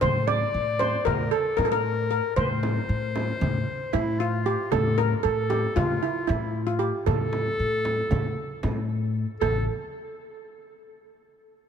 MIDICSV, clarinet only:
0, 0, Header, 1, 2, 480
1, 0, Start_track
1, 0, Tempo, 521739
1, 18, Time_signature, 9, 3, 24, 8
1, 10753, End_track
2, 0, Start_track
2, 0, Title_t, "Clarinet"
2, 0, Program_c, 0, 71
2, 14, Note_on_c, 0, 72, 82
2, 252, Note_on_c, 0, 74, 85
2, 266, Note_off_c, 0, 72, 0
2, 973, Note_on_c, 0, 70, 78
2, 987, Note_off_c, 0, 74, 0
2, 1210, Note_on_c, 0, 69, 76
2, 1224, Note_off_c, 0, 70, 0
2, 1448, Note_on_c, 0, 70, 81
2, 1462, Note_off_c, 0, 69, 0
2, 1568, Note_off_c, 0, 70, 0
2, 1574, Note_on_c, 0, 70, 88
2, 2136, Note_off_c, 0, 70, 0
2, 2173, Note_on_c, 0, 72, 85
2, 3620, Note_on_c, 0, 64, 74
2, 3634, Note_off_c, 0, 72, 0
2, 3855, Note_on_c, 0, 65, 77
2, 3869, Note_off_c, 0, 64, 0
2, 4335, Note_on_c, 0, 69, 75
2, 4349, Note_off_c, 0, 65, 0
2, 4579, Note_on_c, 0, 70, 67
2, 4593, Note_off_c, 0, 69, 0
2, 4748, Note_off_c, 0, 70, 0
2, 4748, Note_on_c, 0, 70, 55
2, 4822, Note_on_c, 0, 69, 85
2, 4836, Note_off_c, 0, 70, 0
2, 5306, Note_on_c, 0, 65, 74
2, 5319, Note_off_c, 0, 69, 0
2, 5785, Note_on_c, 0, 64, 63
2, 5799, Note_off_c, 0, 65, 0
2, 6144, Note_off_c, 0, 64, 0
2, 6494, Note_on_c, 0, 69, 97
2, 8142, Note_off_c, 0, 69, 0
2, 8647, Note_on_c, 0, 69, 85
2, 8877, Note_off_c, 0, 69, 0
2, 10753, End_track
0, 0, End_of_file